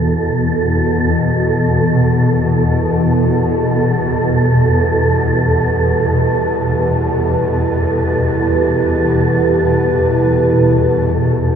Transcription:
Already playing: E2 B2 A4
1.94 E4
3.24 G4
3.90 B4
11.20 E2 B2 G4

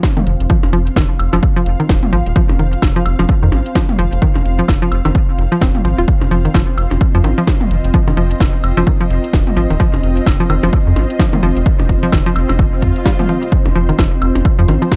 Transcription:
Already playing: C4 F4 C5 F5
0.03 kick, snare, closed hi-hat, percussion blips
0.17 D#3, mid tom
0.27 F1, closed hi-hat
0.40 F1, closed hi-hat
0.50 F3, kick, closed hi-hat
0.63 F1, percussion blips
0.73 F1 F3, closed hi-hat
0.87 closed hi-hat
0.96 F1 D#3, kick, snare, closed hi-hat, high woodblock
1.19 F1, closed hi-hat, high woodblock
1.33 F1 F3, closed hi-hat, percussion blips, high woodblock
1.43 kick, closed hi-hat
1.56 F3
1.66 F1, closed hi-hat
1.80 D#3, closed hi-hat
1.89 D#1, kick, snare, closed hi-hat
2.03 mid tom
2.13 G#1 F3, closed hi-hat
2.26 D#1, closed hi-hat
2.36 F3, kick, closed hi-hat
2.49 F1, percussion blips
2.59 F1 D#3, closed hi-hat
2.73 closed hi-hat
2.82 F1, kick, snare, closed hi-hat, high woodblock
2.96 F3
3.06 F1, closed hi-hat, high woodblock
3.19 F1 F3, closed hi-hat, percussion blips
3.29 kick, closed hi-hat
3.43 F2 D#3
3.52 G#1, closed hi-hat, percussion blips
3.66 closed hi-hat
3.75 F3, kick, snare, closed hi-hat, percussion blips
3.89 mid tom
3.99 F1 F3, closed hi-hat
4.12 F1, closed hi-hat
4.22 D#3, kick, closed hi-hat
4.36 F1, percussion blips
4.45 F1, closed hi-hat
4.59 F3, closed hi-hat
4.68 F1, kick, snare, closed hi-hat, high woodblock
4.82 F3
4.92 F1, closed hi-hat, high woodblock
5.05 F1 D#3, closed hi-hat, percussion blips, high woodblock
5.15 kick, closed hi-hat
5.38 F1, closed hi-hat
5.52 F3, closed hi-hat
5.61 D#1 C4, kick, snare, closed hi-hat
5.75 mid tom
5.85 G#1 F3, closed hi-hat
5.98 D#1 F4, closed hi-hat
6.08 kick, closed hi-hat
6.21 F1, percussion blips
6.31 F1 F3, closed hi-hat
6.41 D#3 D#5
6.45 closed hi-hat
6.54 F1 F3, kick, snare, closed hi-hat, high woodblock
6.78 F1, closed hi-hat, high woodblock
6.91 F1, closed hi-hat, percussion blips
7.01 kick, closed hi-hat
7.15 F2 F3
7.24 G#1 D#3, closed hi-hat, percussion blips
7.38 F3, closed hi-hat
7.47 kick, snare, closed hi-hat, percussion blips
7.61 mid tom
7.71 F1, closed hi-hat
7.84 F1, closed hi-hat
7.94 F3, kick, closed hi-hat
8.07 F1 D#3, percussion blips
8.17 F1 F3, closed hi-hat
8.31 closed hi-hat
8.40 F1, kick, snare, closed hi-hat, high woodblock
8.64 F1, closed hi-hat, high woodblock
8.77 F1 F3, closed hi-hat, percussion blips, high woodblock
8.87 D#3, kick, closed hi-hat
9.01 F3
9.10 F1, closed hi-hat
9.24 closed hi-hat
9.33 D#1, kick, snare, closed hi-hat
9.47 mid tom
9.57 G#1 F3, closed hi-hat
9.70 D#1 D#3, closed hi-hat
9.80 F3, kick, closed hi-hat
9.93 F1, percussion blips
10.03 F1, closed hi-hat
10.17 closed hi-hat
10.26 F1, kick, snare, closed hi-hat, high woodblock
10.40 F3
10.50 F1 D#3, closed hi-hat, high woodblock
10.63 F1 F3, closed hi-hat, percussion blips
10.73 kick, closed hi-hat
10.87 F2
10.96 G#1, closed hi-hat, percussion blips
11.10 closed hi-hat
11.19 F3, kick, snare, closed hi-hat, percussion blips
11.33 D#3, mid tom
11.43 F1 F3, closed hi-hat
11.56 F1, closed hi-hat
11.66 kick, closed hi-hat
11.80 F1, percussion blips
11.89 F1, kick, closed hi-hat
12.03 F3, closed hi-hat
12.12 F1 D#3, kick, snare, closed hi-hat, high woodblock
12.26 F3
12.36 F1, closed hi-hat, high woodblock
12.49 F1, closed hi-hat, percussion blips, high woodblock
12.59 kick, closed hi-hat, swell
12.82 F2, kick, closed hi-hat
12.96 closed hi-hat
13.06 G3, kick, snare, closed hi-hat
13.19 F3, mid tom
13.29 F3, closed hi-hat
13.43 closed hi-hat
13.52 kick, closed hi-hat
13.66 F1, percussion blips
13.75 F1 F3, closed hi-hat
13.85 D#3 F5, closed hi-hat
13.99 F1 F3, kick, snare, closed hi-hat, high woodblock
14.22 F1, closed hi-hat, high woodblock
14.35 F1, closed hi-hat, percussion blips
14.45 kick, closed hi-hat
14.59 F2 F3
14.68 G#1 D#3, closed hi-hat, percussion blips
14.82 F3, closed hi-hat
14.92 kick, snare, closed hi-hat, percussion blips

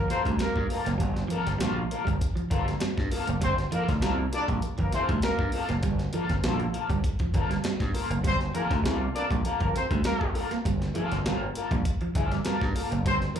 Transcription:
0.08 A#3 C4 F4 A4 C5, muted clean electric guitar stroke, snare, closed hi-hat
0.24 D2 G3, muted clean electric guitar stroke, kick, closed hi-hat
0.39 G3 A#3 A#4, muted clean electric guitar stroke, snare, closed hi-hat
0.56 G2, muted clean electric guitar stroke, kick
0.69 A#3 F4 A4, muted clean electric guitar stroke, open hi-hat
0.85 F#1 A#3, muted clean electric guitar stroke, snare, closed hi-hat
0.98 G1 G3, kick, closed hi-hat
1.14 muted clean electric guitar stroke, snare, closed hi-hat
1.28 F3 A#3 F4, closed hi-hat
1.32 A4
1.47 G1, snare, closed hi-hat
1.58 A#1 G3 A#3, snare, closed hi-hat
1.63 F4 A4
1.77 muted clean electric guitar stroke
1.91 A#3 F4 A4, closed hi-hat
2.05 G1 G3, muted clean electric guitar stroke, kick, closed hi-hat
2.21 muted clean electric guitar stroke, kick, closed hi-hat
2.36 F3, muted clean electric guitar stroke, closed hi-hat
2.50 G1 A#3 F4 A4, muted clean electric guitar stroke, kick, closed hi-hat
2.65 G3, muted clean electric guitar stroke, snare, closed hi-hat
2.80 G3, muted clean electric guitar stroke, snare, closed hi-hat
2.97 G2, muted clean electric guitar stroke, kick, snare
3.11 A#3 F4 A4, muted clean electric guitar stroke, open hi-hat
3.27 F#1 A#3, muted clean electric guitar stroke, closed hi-hat
3.41 G1 G3 C4 C5, kick, closed hi-hat
3.57 muted clean electric guitar stroke, snare, closed hi-hat
3.72 F3 A#3 F4 A4 A#4, closed hi-hat
3.89 D2, kick, snare, closed hi-hat
4.02 C2 G3 A#3 F4 A4, snare, closed hi-hat
4.18 muted clean electric guitar stroke
4.32 A#3 D4 F4 A4 D5, snare, closed hi-hat
4.48 A#1 G3, muted clean electric guitar stroke, kick, closed hi-hat
4.62 muted clean electric guitar stroke, closed hi-hat
4.78 G1 F3 A#3 A#4, muted clean electric guitar stroke, kick, closed hi-hat
4.92 A#3 C4 F4 A4 C5, muted clean electric guitar stroke, snare, closed hi-hat
5.09 D2 G3, muted clean electric guitar stroke, kick, closed hi-hat
5.22 G3 A#3 A#4, muted clean electric guitar stroke, snare, closed hi-hat
5.39 G2, muted clean electric guitar stroke, kick
5.52 A#3 F4 A4, muted clean electric guitar stroke, open hi-hat
5.69 F#1 A#3, muted clean electric guitar stroke, snare, closed hi-hat
5.83 G1 G3, kick, closed hi-hat
5.99 muted clean electric guitar stroke, snare, closed hi-hat
6.13 F3 A#3 F4 A4, closed hi-hat
6.29 G1, kick, snare, closed hi-hat
6.44 A#1 G3 A#3 F4 A4, snare, closed hi-hat
6.59 muted clean electric guitar stroke, closed hi-hat
6.73 A#3 F4 A4, closed hi-hat
6.89 G1 G3, muted clean electric guitar stroke, kick, closed hi-hat
7.04 muted clean electric guitar stroke, kick, closed hi-hat
7.19 F3, muted clean electric guitar stroke, kick, closed hi-hat
7.34 G1 A#3 F4 A4, muted clean electric guitar stroke, kick, closed hi-hat
7.49 G3, muted clean electric guitar stroke, snare, closed hi-hat
7.64 G3, muted clean electric guitar stroke, snare, closed hi-hat
7.80 G2, kick, snare, closed hi-hat
7.94 A#3 F4 A4, muted clean electric guitar stroke, open hi-hat
8.10 F#1 A#3, muted clean electric guitar stroke, closed hi-hat
8.24 G1 G3 C4 C5, kick, closed hi-hat
8.40 muted clean electric guitar stroke, snare, closed hi-hat
8.54 F3 A#3 F4 A4 A#4, closed hi-hat
8.71 D2, kick, snare, closed hi-hat
8.84 C2 G3 A#3 F4 A4, snare, closed hi-hat
9.01 muted clean electric guitar stroke
9.14 A#3 D4 F4 A4 D5, snare, closed hi-hat
9.30 A#1 G3, muted clean electric guitar stroke, kick, closed hi-hat
9.44 A#3 F4 A4, closed hi-hat
9.60 G1 F3 A#3 A#4, kick, closed hi-hat
9.75 C4 C5, muted clean electric guitar stroke, snare, closed hi-hat
9.91 D2 G3, muted clean electric guitar stroke, kick, closed hi-hat
10.04 G3 A#3 A#4, muted clean electric guitar stroke, snare, closed hi-hat
10.21 muted clean electric guitar stroke, kick
10.34 A#3 F4 A4, muted clean electric guitar stroke, open hi-hat
10.51 A#3, muted clean electric guitar stroke, snare, closed hi-hat
10.65 G1 G3, kick, closed hi-hat
10.82 muted clean electric guitar stroke, snare, closed hi-hat
10.94 F3 A#3 F4 A4, closed hi-hat
11.12 G1, snare, closed hi-hat
11.25 G1 G3 A#3 F4 A4, snare, closed hi-hat
11.41 muted clean electric guitar stroke
11.55 A#3 F4 A4, closed hi-hat
11.71 A#1 G3, muted clean electric guitar stroke, kick, closed hi-hat
11.85 muted clean electric guitar stroke, kick, closed hi-hat
12.01 F3, muted clean electric guitar stroke, closed hi-hat
12.15 G1 A#3 F4 A4, muted clean electric guitar stroke, kick, closed hi-hat
12.32 G3, muted clean electric guitar stroke, snare, closed hi-hat
12.44 G3 A#3 F4 A4, snare, closed hi-hat
12.61 G2, muted clean electric guitar stroke, kick, snare
12.75 A#3 F4 A4, muted clean electric guitar stroke, open hi-hat
12.91 F#1 A#3, muted clean electric guitar stroke, closed hi-hat
13.06 G1 G3 C4 C5, kick, closed hi-hat
13.21 muted clean electric guitar stroke, snare, closed hi-hat
13.34 F3 A#3 F4 A4 A#4, closed hi-hat

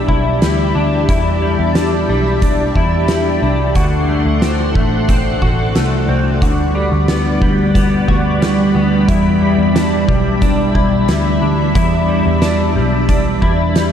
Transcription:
Already playing: E2 G3 D4 G4 D5 E5 B5
0.08 B1 E4, kick
0.42 D2 G3, snare, closed hi-hat
0.75 D2 D4
1.09 E2 E4 A5, kick, closed hi-hat
1.42 G3
1.59 E2
1.75 D4, snare, closed hi-hat
2.08 B1 G3
2.42 D4, kick, closed hi-hat
2.75 E2 E4, kick
3.08 G3, snare, closed hi-hat
3.42 C2 D4
3.75 D2 D3 F#4 A4 D5 F#5 C6, kick, closed hi-hat
4.09 A3
4.25 D2
4.42 C4, snare, closed hi-hat
4.75 A1 A3, kick
5.09 C4, kick, closed hi-hat
5.42 A1 F#4, kick
5.75 C2 A3, snare, closed hi-hat
6.09 C2 C4
6.42 D2 D3 G3 F#4 F#5 B5, kick, closed hi-hat
6.75 G3
6.92 D2
7.08 B3, snare, closed hi-hat
7.42 D2 G3, kick
7.74 B3, kick, closed hi-hat
8.08 D2 F#4, kick
8.41 G3, snare, closed hi-hat
8.75 D2 B3
9.08 E2 E4 E5, kick, closed hi-hat
9.42 G3
9.58 E2
9.75 D4, snare, closed hi-hat
10.08 B1 G3, kick
10.42 D4, kick, closed hi-hat
10.75 B1 E4, kick
11.08 D2 G3, snare, closed hi-hat
11.42 D2 D4
11.75 E2 E4, kick, closed hi-hat
12.09 G3
12.26 E2
12.42 D4, snare, closed hi-hat
12.76 B1 G3
13.09 D4, kick, closed hi-hat
13.42 E2 E4, kick
13.75 G3, snare, closed hi-hat

